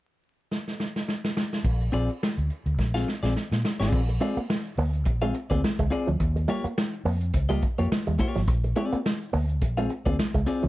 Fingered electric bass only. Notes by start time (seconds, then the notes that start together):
1.65 A#1
1.93 A#1
2.38 D2
2.66 D2
2.79 A#1
3.23 A#1
3.52 A#2
3.80 G#1
3.92 A#1
4.37 muted fingered electric bass stroke
4.78 D2
5.06 A#1
5.51 D2
5.63 muted fingered electric bass stroke
5.79 C#2
6.08 D2
6.20 D#2
6.64 muted fingered electric bass stroke
7.05 F2
7.34 C#2
7.79 F2
7.91 muted fingered electric bass stroke
8.07 D#2
8.36 G#1
8.48 A#1
8.93 muted fingered electric bass stroke
9.33 D2
9.62 A#1
10.06 D2
10.19 muted fingered electric bass stroke
10.35 C#2
10.64 D2